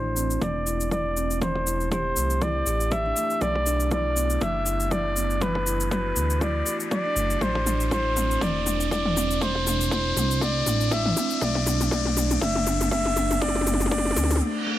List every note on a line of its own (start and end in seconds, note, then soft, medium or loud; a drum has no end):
0.00 0.38 A1 loud
0.00 0.42 C5 medium
0.00 riser medium
0.16 0.29 C4 medium
0.16 cabasa medium
0.30 cabasa medium
0.41 2.13 E1 medium
0.41 0.54 A3 medium
0.41 0.89 D5 loud
0.41 kick loud
0.41 mid tom soft
0.41 cabasa soft
0.67 0.79 E4 medium
0.67 cabasa medium
0.81 cabasa medium
0.91 0.99 E4 medium
0.91 1.39 D5 loud
0.91 kick loud
0.91 mid tom medium
0.91 cabasa soft
1.17 1.29 C4 medium
1.17 cabasa medium
1.31 cabasa medium
1.42 1.49 E3 loud
1.42 1.89 C5 loud
1.42 kick loud
1.42 mid tom medium
1.42 cabasa soft
1.56 kick medium
1.67 1.79 E4 medium
1.67 cabasa medium
1.80 cabasa medium
1.92 2.05 G4 medium
1.92 2.44 C5 loud
1.92 kick loud
1.92 mid tom medium
1.92 cabasa soft
2.16 2.63 C2 medium
2.16 2.30 A3 medium
2.16 cabasa loud
2.30 cabasa medium
2.41 2.54 E4 medium
2.41 2.93 D5 loud
2.41 kick loud
2.41 mid tom medium
2.41 cabasa soft
2.66 3.13 A1 medium
2.66 2.79 G4 medium
2.66 cabasa medium
2.80 cabasa medium
2.91 3.05 G4 medium
2.91 3.43 E5 loud
2.91 kick loud
2.91 mid tom medium
2.91 cabasa soft
3.06 3.16 D4 medium
3.16 3.30 A3 medium
3.16 cabasa medium
3.30 cabasa medium
3.41 4.38 B1 medium
3.41 3.55 A3 medium
3.41 3.92 D5 loud
3.41 kick loud
3.41 mid tom medium
3.41 cabasa soft
3.55 kick medium
3.66 3.80 D4 loud
3.66 cabasa medium
3.80 cabasa medium
3.91 3.99 E4 medium
3.91 4.44 D5 loud
3.91 kick loud
3.91 mid tom medium
3.91 cabasa soft
4.16 4.29 B3 medium
4.16 cabasa loud
4.30 cabasa medium
4.41 6.13 F#1 medium
4.41 4.54 A3 medium
4.41 4.94 E5 loud
4.41 kick loud
4.41 mid tom medium
4.41 cabasa soft
4.66 4.79 E4 medium
4.66 cabasa medium
4.80 cabasa medium
4.91 4.99 E4 medium
4.91 5.44 D5 loud
4.91 kick loud
4.91 mid tom medium
4.91 cabasa soft
5.16 5.29 B3 medium
5.16 cabasa medium
5.30 cabasa medium
5.41 5.49 E3 loud
5.41 5.91 B4 loud
5.41 kick loud
5.41 mid tom medium
5.41 cabasa soft
5.55 kick medium
5.66 5.79 E4 medium
5.66 cabasa medium
5.80 cabasa medium
5.91 6.05 F#4 medium
5.91 6.44 B4 medium
5.91 kick loud
5.91 mid tom medium
5.91 cabasa soft
6.16 6.63 D2 loud
6.16 6.30 A3 medium
6.16 cabasa loud
6.30 cabasa medium
6.41 6.54 E4 medium
6.41 6.78 D5 loud
6.41 kick loud
6.41 mid tom medium
6.41 cabasa soft
6.66 6.79 F#4 medium
6.66 cabasa medium
6.80 cabasa medium
6.91 7.05 F#4 medium
6.91 7.44 D5 loud
6.91 kick loud
6.91 mid tom medium
6.91 cabasa soft
7.06 7.16 D4 medium
7.16 7.37 F#1 loud
7.16 7.30 A3 medium
7.16 cabasa medium
7.30 cabasa medium
7.41 8.38 A1 loud
7.41 7.55 A3 medium
7.41 7.92 C5 medium
7.41 kick loud
7.41 mid tom medium
7.41 cabasa soft
7.55 kick medium
7.66 7.80 D4 medium
7.66 mid tom medium
7.66 cabasa loud
7.80 cabasa medium
7.91 7.99 E4 medium
7.91 8.44 C5 loud
7.91 kick loud
7.91 mid tom medium
7.91 cabasa soft
8.17 8.29 C4 medium
8.17 mid tom medium
8.17 cabasa medium
8.31 cabasa medium
8.41 10.13 E1 medium
8.41 8.55 A3 medium
8.41 8.92 D5 loud
8.41 kick loud
8.41 mid tom medium
8.41 cabasa soft
8.66 8.80 D4 medium
8.66 mid tom medium
8.66 cabasa medium
8.80 cabasa medium
8.91 8.99 E4 medium
8.91 9.44 D5 loud
8.91 kick loud
8.91 mid tom medium
8.91 cabasa soft
9.05 mid tom medium
9.16 9.29 C4 medium
9.16 mid tom medium
9.16 cabasa medium
9.31 cabasa medium
9.41 9.55 A3 medium
9.41 9.92 C5 medium
9.41 kick loud
9.41 mid tom medium
9.41 cabasa soft
9.55 kick medium
9.66 9.80 D4 medium
9.66 mid tom medium
9.66 cabasa medium
9.81 cabasa medium
9.91 9.99 E4 medium
9.91 10.44 C5 medium
9.91 kick loud
9.91 mid tom medium
9.91 cabasa soft
10.16 10.63 C2 loud
10.16 10.29 C4 medium
10.16 mid tom medium
10.16 cabasa medium
10.31 cabasa soft
10.41 10.55 A3 medium
10.41 10.94 D5 loud
10.41 kick loud
10.41 mid tom medium
10.41 cabasa soft
10.66 11.13 A1 medium
10.66 10.80 D4 medium
10.66 mid tom medium
10.66 cabasa medium
10.81 cabasa medium
10.91 10.99 E4 medium
10.91 11.44 E5 loud
10.91 kick loud
10.91 mid tom medium
10.91 cabasa soft
11.06 mid tom medium
11.17 11.29 C4 medium
11.17 mid tom medium
11.17 cabasa medium
11.30 cabasa medium
11.41 12.38 B1 medium
11.41 11.55 A3 medium
11.41 11.92 D5 loud
11.41 kick loud
11.41 mid tom medium
11.41 cabasa soft
11.55 kick medium
11.55 mid tom medium
11.67 11.80 D4 loud
11.67 mid tom loud
11.67 cabasa medium
11.81 mid tom medium
11.81 cabasa medium
11.91 12.05 A3 medium
11.91 12.39 D5 medium
11.91 kick loud
11.91 mid tom medium
11.91 cabasa soft
12.05 mid tom medium
12.17 12.30 D4 medium
12.17 mid tom loud
12.17 cabasa medium
12.31 mid tom medium
12.31 cabasa medium
12.41 14.13 F#1 medium
12.41 12.55 A3 medium
12.41 12.88 E5 loud
12.41 kick loud
12.41 mid tom medium
12.41 cabasa soft
12.56 mid tom medium
12.67 12.80 D4 loud
12.67 mid tom medium
12.67 cabasa medium
12.81 mid tom medium
12.81 cabasa medium
12.91 13.05 A3 medium
12.91 13.43 E5 loud
12.91 kick loud
12.91 mid tom loud
12.91 cabasa soft
13.06 mid tom medium
13.16 13.30 D4 loud
13.16 mid tom loud
13.16 cabasa medium
13.31 mid tom medium
13.31 cabasa soft
13.41 13.55 A3 medium
13.41 13.91 D5 loud
13.41 kick loud
13.41 mid tom loud
13.41 cabasa soft
13.48 mid tom medium
13.55 kick medium
13.55 mid tom medium
13.61 mid tom medium
13.67 13.80 A3 medium
13.67 mid tom loud
13.67 cabasa medium
13.74 mid tom medium
13.80 mid tom medium
13.80 cabasa medium
13.86 mid tom medium
13.91 14.05 A3 medium
13.91 14.38 D5 medium
13.91 kick loud
13.91 mid tom loud
13.91 cabasa soft
13.98 mid tom medium
14.05 mid tom medium
14.11 mid tom medium
14.16 14.42 D2 loud
14.16 14.30 A3 medium
14.16 mid tom loud
14.16 cabasa loud
14.24 mid tom loud
14.31 mid tom medium
14.31 cabasa medium
14.36 mid tom loud
14.41 14.55 A3 medium
14.41 reverse cymbal medium
14.67 14.79 A3 medium